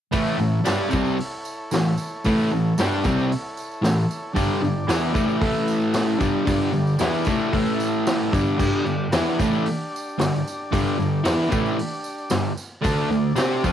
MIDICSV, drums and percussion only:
0, 0, Header, 1, 2, 480
1, 0, Start_track
1, 0, Tempo, 530035
1, 110, Time_signature, 4, 2, 24, 8
1, 12428, End_track
2, 0, Start_track
2, 0, Title_t, "Drums"
2, 112, Note_on_c, 9, 54, 68
2, 122, Note_on_c, 9, 36, 109
2, 126, Note_on_c, 9, 46, 61
2, 203, Note_off_c, 9, 54, 0
2, 213, Note_off_c, 9, 36, 0
2, 216, Note_off_c, 9, 46, 0
2, 242, Note_on_c, 9, 54, 28
2, 333, Note_off_c, 9, 54, 0
2, 358, Note_on_c, 9, 54, 28
2, 449, Note_off_c, 9, 54, 0
2, 593, Note_on_c, 9, 54, 97
2, 598, Note_on_c, 9, 46, 65
2, 602, Note_on_c, 9, 38, 109
2, 683, Note_off_c, 9, 54, 0
2, 688, Note_off_c, 9, 46, 0
2, 693, Note_off_c, 9, 38, 0
2, 712, Note_on_c, 9, 54, 27
2, 802, Note_off_c, 9, 54, 0
2, 823, Note_on_c, 9, 54, 72
2, 845, Note_on_c, 9, 36, 105
2, 914, Note_off_c, 9, 54, 0
2, 935, Note_off_c, 9, 36, 0
2, 953, Note_on_c, 9, 54, 26
2, 1044, Note_off_c, 9, 54, 0
2, 1073, Note_on_c, 9, 54, 25
2, 1090, Note_on_c, 9, 46, 62
2, 1164, Note_off_c, 9, 54, 0
2, 1181, Note_off_c, 9, 46, 0
2, 1313, Note_on_c, 9, 54, 69
2, 1403, Note_off_c, 9, 54, 0
2, 1552, Note_on_c, 9, 54, 96
2, 1571, Note_on_c, 9, 46, 64
2, 1576, Note_on_c, 9, 38, 110
2, 1642, Note_off_c, 9, 54, 0
2, 1662, Note_off_c, 9, 46, 0
2, 1666, Note_off_c, 9, 38, 0
2, 1676, Note_on_c, 9, 54, 30
2, 1767, Note_off_c, 9, 54, 0
2, 1789, Note_on_c, 9, 54, 71
2, 1880, Note_off_c, 9, 54, 0
2, 2032, Note_on_c, 9, 54, 73
2, 2048, Note_on_c, 9, 36, 99
2, 2050, Note_on_c, 9, 46, 62
2, 2123, Note_off_c, 9, 54, 0
2, 2138, Note_off_c, 9, 36, 0
2, 2141, Note_off_c, 9, 46, 0
2, 2160, Note_on_c, 9, 54, 31
2, 2251, Note_off_c, 9, 54, 0
2, 2268, Note_on_c, 9, 54, 30
2, 2358, Note_off_c, 9, 54, 0
2, 2515, Note_on_c, 9, 54, 96
2, 2528, Note_on_c, 9, 46, 60
2, 2532, Note_on_c, 9, 38, 113
2, 2606, Note_off_c, 9, 54, 0
2, 2618, Note_off_c, 9, 46, 0
2, 2623, Note_off_c, 9, 38, 0
2, 2755, Note_on_c, 9, 54, 72
2, 2763, Note_on_c, 9, 36, 112
2, 2846, Note_off_c, 9, 54, 0
2, 2853, Note_off_c, 9, 36, 0
2, 2889, Note_on_c, 9, 54, 28
2, 2979, Note_off_c, 9, 54, 0
2, 3005, Note_on_c, 9, 46, 53
2, 3010, Note_on_c, 9, 54, 27
2, 3096, Note_off_c, 9, 46, 0
2, 3101, Note_off_c, 9, 54, 0
2, 3236, Note_on_c, 9, 54, 67
2, 3326, Note_off_c, 9, 54, 0
2, 3362, Note_on_c, 9, 54, 29
2, 3453, Note_off_c, 9, 54, 0
2, 3476, Note_on_c, 9, 46, 55
2, 3480, Note_on_c, 9, 38, 115
2, 3487, Note_on_c, 9, 54, 89
2, 3567, Note_off_c, 9, 46, 0
2, 3571, Note_off_c, 9, 38, 0
2, 3578, Note_off_c, 9, 54, 0
2, 3606, Note_on_c, 9, 54, 27
2, 3696, Note_off_c, 9, 54, 0
2, 3719, Note_on_c, 9, 54, 71
2, 3809, Note_off_c, 9, 54, 0
2, 3947, Note_on_c, 9, 46, 62
2, 3950, Note_on_c, 9, 36, 106
2, 3951, Note_on_c, 9, 54, 73
2, 4037, Note_off_c, 9, 46, 0
2, 4041, Note_off_c, 9, 36, 0
2, 4041, Note_off_c, 9, 54, 0
2, 4075, Note_on_c, 9, 54, 29
2, 4166, Note_off_c, 9, 54, 0
2, 4207, Note_on_c, 9, 54, 28
2, 4298, Note_off_c, 9, 54, 0
2, 4427, Note_on_c, 9, 46, 62
2, 4432, Note_on_c, 9, 38, 106
2, 4436, Note_on_c, 9, 54, 92
2, 4518, Note_off_c, 9, 46, 0
2, 4522, Note_off_c, 9, 38, 0
2, 4527, Note_off_c, 9, 54, 0
2, 4560, Note_on_c, 9, 54, 26
2, 4651, Note_off_c, 9, 54, 0
2, 4665, Note_on_c, 9, 36, 113
2, 4674, Note_on_c, 9, 54, 76
2, 4756, Note_off_c, 9, 36, 0
2, 4764, Note_off_c, 9, 54, 0
2, 4788, Note_on_c, 9, 54, 25
2, 4879, Note_off_c, 9, 54, 0
2, 4905, Note_on_c, 9, 36, 111
2, 4905, Note_on_c, 9, 46, 61
2, 4906, Note_on_c, 9, 54, 25
2, 4996, Note_off_c, 9, 36, 0
2, 4996, Note_off_c, 9, 46, 0
2, 4996, Note_off_c, 9, 54, 0
2, 5141, Note_on_c, 9, 54, 63
2, 5231, Note_off_c, 9, 54, 0
2, 5265, Note_on_c, 9, 54, 25
2, 5356, Note_off_c, 9, 54, 0
2, 5378, Note_on_c, 9, 46, 60
2, 5378, Note_on_c, 9, 54, 84
2, 5383, Note_on_c, 9, 38, 118
2, 5468, Note_off_c, 9, 54, 0
2, 5469, Note_off_c, 9, 46, 0
2, 5473, Note_off_c, 9, 38, 0
2, 5505, Note_on_c, 9, 54, 25
2, 5596, Note_off_c, 9, 54, 0
2, 5621, Note_on_c, 9, 54, 66
2, 5622, Note_on_c, 9, 36, 104
2, 5712, Note_off_c, 9, 54, 0
2, 5713, Note_off_c, 9, 36, 0
2, 5862, Note_on_c, 9, 36, 107
2, 5862, Note_on_c, 9, 54, 70
2, 5869, Note_on_c, 9, 46, 63
2, 5952, Note_off_c, 9, 54, 0
2, 5953, Note_off_c, 9, 36, 0
2, 5960, Note_off_c, 9, 46, 0
2, 5984, Note_on_c, 9, 54, 27
2, 6075, Note_off_c, 9, 54, 0
2, 6101, Note_on_c, 9, 54, 28
2, 6192, Note_off_c, 9, 54, 0
2, 6221, Note_on_c, 9, 54, 25
2, 6312, Note_off_c, 9, 54, 0
2, 6328, Note_on_c, 9, 54, 88
2, 6342, Note_on_c, 9, 46, 62
2, 6347, Note_on_c, 9, 38, 113
2, 6419, Note_off_c, 9, 54, 0
2, 6433, Note_off_c, 9, 46, 0
2, 6437, Note_off_c, 9, 38, 0
2, 6465, Note_on_c, 9, 54, 28
2, 6556, Note_off_c, 9, 54, 0
2, 6563, Note_on_c, 9, 54, 73
2, 6583, Note_on_c, 9, 36, 104
2, 6654, Note_off_c, 9, 54, 0
2, 6673, Note_off_c, 9, 36, 0
2, 6821, Note_on_c, 9, 46, 60
2, 6822, Note_on_c, 9, 36, 100
2, 6827, Note_on_c, 9, 54, 26
2, 6911, Note_off_c, 9, 46, 0
2, 6912, Note_off_c, 9, 36, 0
2, 6918, Note_off_c, 9, 54, 0
2, 6936, Note_on_c, 9, 54, 27
2, 7027, Note_off_c, 9, 54, 0
2, 7064, Note_on_c, 9, 54, 72
2, 7154, Note_off_c, 9, 54, 0
2, 7304, Note_on_c, 9, 46, 58
2, 7305, Note_on_c, 9, 54, 92
2, 7309, Note_on_c, 9, 38, 110
2, 7395, Note_off_c, 9, 46, 0
2, 7396, Note_off_c, 9, 54, 0
2, 7399, Note_off_c, 9, 38, 0
2, 7545, Note_on_c, 9, 36, 105
2, 7555, Note_on_c, 9, 54, 75
2, 7636, Note_off_c, 9, 36, 0
2, 7645, Note_off_c, 9, 54, 0
2, 7667, Note_on_c, 9, 54, 30
2, 7757, Note_off_c, 9, 54, 0
2, 7783, Note_on_c, 9, 36, 108
2, 7783, Note_on_c, 9, 49, 98
2, 7787, Note_on_c, 9, 54, 76
2, 7874, Note_off_c, 9, 36, 0
2, 7874, Note_off_c, 9, 49, 0
2, 7878, Note_off_c, 9, 54, 0
2, 7902, Note_on_c, 9, 54, 30
2, 7992, Note_off_c, 9, 54, 0
2, 8024, Note_on_c, 9, 54, 30
2, 8115, Note_off_c, 9, 54, 0
2, 8259, Note_on_c, 9, 46, 58
2, 8263, Note_on_c, 9, 38, 109
2, 8266, Note_on_c, 9, 54, 105
2, 8349, Note_off_c, 9, 46, 0
2, 8354, Note_off_c, 9, 38, 0
2, 8357, Note_off_c, 9, 54, 0
2, 8387, Note_on_c, 9, 54, 30
2, 8478, Note_off_c, 9, 54, 0
2, 8508, Note_on_c, 9, 36, 102
2, 8512, Note_on_c, 9, 54, 81
2, 8599, Note_off_c, 9, 36, 0
2, 8603, Note_off_c, 9, 54, 0
2, 8633, Note_on_c, 9, 54, 30
2, 8723, Note_off_c, 9, 54, 0
2, 8747, Note_on_c, 9, 46, 63
2, 8770, Note_on_c, 9, 54, 28
2, 8837, Note_off_c, 9, 46, 0
2, 8861, Note_off_c, 9, 54, 0
2, 9019, Note_on_c, 9, 54, 76
2, 9110, Note_off_c, 9, 54, 0
2, 9134, Note_on_c, 9, 54, 31
2, 9225, Note_off_c, 9, 54, 0
2, 9230, Note_on_c, 9, 46, 59
2, 9234, Note_on_c, 9, 38, 113
2, 9247, Note_on_c, 9, 54, 96
2, 9320, Note_off_c, 9, 46, 0
2, 9325, Note_off_c, 9, 38, 0
2, 9338, Note_off_c, 9, 54, 0
2, 9382, Note_on_c, 9, 54, 30
2, 9472, Note_off_c, 9, 54, 0
2, 9487, Note_on_c, 9, 54, 81
2, 9577, Note_off_c, 9, 54, 0
2, 9716, Note_on_c, 9, 36, 112
2, 9720, Note_on_c, 9, 46, 60
2, 9722, Note_on_c, 9, 54, 78
2, 9806, Note_off_c, 9, 36, 0
2, 9810, Note_off_c, 9, 46, 0
2, 9813, Note_off_c, 9, 54, 0
2, 9840, Note_on_c, 9, 54, 30
2, 9931, Note_off_c, 9, 54, 0
2, 9962, Note_on_c, 9, 54, 30
2, 10053, Note_off_c, 9, 54, 0
2, 10190, Note_on_c, 9, 46, 63
2, 10190, Note_on_c, 9, 54, 97
2, 10195, Note_on_c, 9, 38, 106
2, 10281, Note_off_c, 9, 46, 0
2, 10281, Note_off_c, 9, 54, 0
2, 10285, Note_off_c, 9, 38, 0
2, 10431, Note_on_c, 9, 54, 78
2, 10436, Note_on_c, 9, 36, 109
2, 10521, Note_off_c, 9, 54, 0
2, 10527, Note_off_c, 9, 36, 0
2, 10556, Note_on_c, 9, 54, 29
2, 10646, Note_off_c, 9, 54, 0
2, 10676, Note_on_c, 9, 54, 27
2, 10678, Note_on_c, 9, 46, 59
2, 10767, Note_off_c, 9, 54, 0
2, 10768, Note_off_c, 9, 46, 0
2, 10904, Note_on_c, 9, 54, 70
2, 10994, Note_off_c, 9, 54, 0
2, 11031, Note_on_c, 9, 54, 28
2, 11122, Note_off_c, 9, 54, 0
2, 11137, Note_on_c, 9, 54, 101
2, 11143, Note_on_c, 9, 46, 58
2, 11147, Note_on_c, 9, 38, 117
2, 11228, Note_off_c, 9, 54, 0
2, 11233, Note_off_c, 9, 46, 0
2, 11238, Note_off_c, 9, 38, 0
2, 11268, Note_on_c, 9, 54, 29
2, 11359, Note_off_c, 9, 54, 0
2, 11388, Note_on_c, 9, 54, 78
2, 11478, Note_off_c, 9, 54, 0
2, 11629, Note_on_c, 9, 54, 76
2, 11633, Note_on_c, 9, 46, 57
2, 11636, Note_on_c, 9, 36, 106
2, 11719, Note_off_c, 9, 54, 0
2, 11724, Note_off_c, 9, 46, 0
2, 11726, Note_off_c, 9, 36, 0
2, 11757, Note_on_c, 9, 54, 30
2, 11848, Note_off_c, 9, 54, 0
2, 11880, Note_on_c, 9, 54, 30
2, 11970, Note_off_c, 9, 54, 0
2, 12102, Note_on_c, 9, 54, 97
2, 12114, Note_on_c, 9, 46, 58
2, 12118, Note_on_c, 9, 38, 111
2, 12193, Note_off_c, 9, 54, 0
2, 12204, Note_off_c, 9, 46, 0
2, 12209, Note_off_c, 9, 38, 0
2, 12239, Note_on_c, 9, 54, 28
2, 12330, Note_off_c, 9, 54, 0
2, 12354, Note_on_c, 9, 36, 102
2, 12354, Note_on_c, 9, 54, 77
2, 12428, Note_off_c, 9, 36, 0
2, 12428, Note_off_c, 9, 54, 0
2, 12428, End_track
0, 0, End_of_file